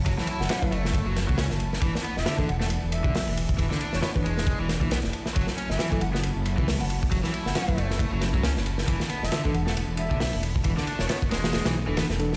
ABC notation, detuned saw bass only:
X:1
M:4/4
L:1/16
Q:"Swing 16ths" 1/4=136
K:Emix
V:1 name="Detuned saw bass" clef=bass
F,,, z2 F,,, z2 F,,,3 F,,,2 C,,2 F,,,3 | E,,, z2 E,,, z2 E,,,3 E,,,2 B,,,2 E,,,3 | E,,, z2 E,,, z2 E,,,3 E,,,2 B,,,2 E,,, z2 | F,,, z2 F,,, z2 F,,,3 F,,,2 C,,2 F,,,3 |
F,,, z2 F,,, z2 F,,,3 F,,,2 C,,2 F,,,3 | E,,, z2 E,,, z2 E,,,3 E,,,2 B,,,2 E,,,3 | E,,, z2 E,,, z2 E,,,3 B,,,2 D,,,2 E,,,3 |]